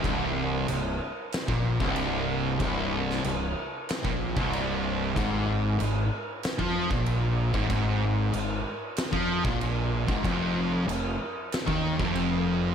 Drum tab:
CC |x---x---x---x---|x---x---x---x---|x---x---x---x---|x---x---x---x---|
SD |--------o-------|---o----o-------|--------o-------|--------o-------|
BD |o--------o-o----|o--------o-o----|o--------o-o---o|o--------o-o---o|

CC |x---x---x---x---|
SD |--------o-------|
BD |o--------o-o----|